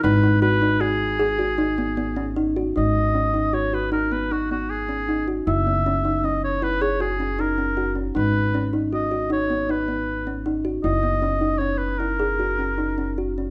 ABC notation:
X:1
M:7/4
L:1/8
Q:1/4=156
K:G#m
V:1 name="Oboe"
B2 B2 G8 z2 | d4 c B A B F F G3 z | e4 d c B c G2 A3 z | B3 z d2 c2 B4 z2 |
d4 c B A6 z2 |]
V:2 name="Kalimba"
D D F D F2 G F D B, B, C D F | D2 C D F F D B, D B,2 C D F | E B, C D C2 E G F C D C F C | D2 C D F F D B, D B,2 C D F |
E B, C D C2 E G F C D C F C |]
V:3 name="Upright bass" clef=bass
G,,,12- G,,,2 | G,,,12- G,,,2 | F,,,12- F,,,2 | G,,,12- G,,,2 |
F,,,12- F,,,2 |]